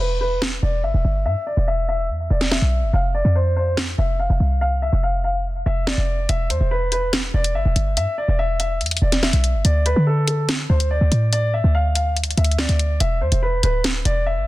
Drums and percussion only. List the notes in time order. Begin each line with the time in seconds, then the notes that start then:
0.42 snare
2.41 snare
2.51 snare
3.77 snare
5.87 snare
6.29 closed hi-hat
6.50 closed hi-hat
6.92 closed hi-hat
7.13 snare, closed hi-hat
7.44 closed hi-hat
7.76 closed hi-hat
7.97 closed hi-hat
8.60 closed hi-hat
8.81 closed hi-hat
8.86 closed hi-hat
8.91 closed hi-hat
8.97 closed hi-hat
9.12 snare, closed hi-hat
9.23 snare
9.33 closed hi-hat
9.44 closed hi-hat
9.65 closed hi-hat
9.86 closed hi-hat
10.28 closed hi-hat
10.49 snare, closed hi-hat
10.80 closed hi-hat
11.12 closed hi-hat
11.33 closed hi-hat
11.95 closed hi-hat
12.17 closed hi-hat
12.24 closed hi-hat
12.31 closed hi-hat
12.38 closed hi-hat
12.44 closed hi-hat
12.51 closed hi-hat
12.59 snare
12.69 closed hi-hat
12.79 closed hi-hat
13.00 closed hi-hat
13.32 closed hi-hat
13.63 closed hi-hat
13.84 snare, closed hi-hat
14.05 closed hi-hat